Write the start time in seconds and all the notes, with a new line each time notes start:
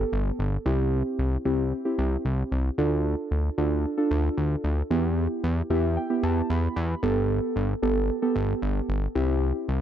Already playing: B3 G4 A4
0.13 G1
0.39 G1
0.66 C2 C4 E4 G4
1.19 C2
1.45 C2 C4 E4 G4
1.85 C4 E4 G4
1.98 C2
2.25 C2
2.52 C2
2.78 D2 D4 F4 A4
3.31 D2
3.58 D2 D4 F4 A4
3.98 D4 F4 A4
4.11 D2
4.37 D2
4.64 D2
4.90 E2 B3 E4 G4
5.44 E2
5.70 E2 B3 E4 G4 E5
5.97 G5
6.10 B3 E4 G4
6.23 E2 A5
6.50 E2 B5
6.76 E2 B5
7.03 G1 B3 G4 A4
7.56 G1
7.82 G1 B3 G4 A4
8.22 B3 G4 A4
8.36 G1
8.62 G1
8.89 G1
9.15 C2 C4 E4 G4
9.68 C2